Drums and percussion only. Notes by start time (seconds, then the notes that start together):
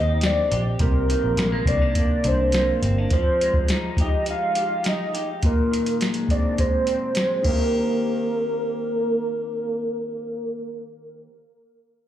0.21 snare, closed hi-hat
0.52 closed hi-hat
0.79 kick, closed hi-hat
1.10 closed hi-hat
1.37 snare, closed hi-hat
1.66 kick, closed hi-hat
1.95 kick, closed hi-hat
2.24 closed hi-hat
2.52 snare, closed hi-hat
2.83 closed hi-hat
3.10 kick, closed hi-hat
3.41 closed hi-hat
3.54 kick
3.68 snare, closed hi-hat
3.97 kick, closed hi-hat
4.26 closed hi-hat
4.55 closed hi-hat
4.84 snare, closed hi-hat
5.15 closed hi-hat
5.43 kick, closed hi-hat
5.73 closed hi-hat
5.86 closed hi-hat
6.01 snare, closed hi-hat
6.14 closed hi-hat
6.29 kick, closed hi-hat
6.58 kick, closed hi-hat
6.87 closed hi-hat
7.15 snare, closed hi-hat
7.44 kick, crash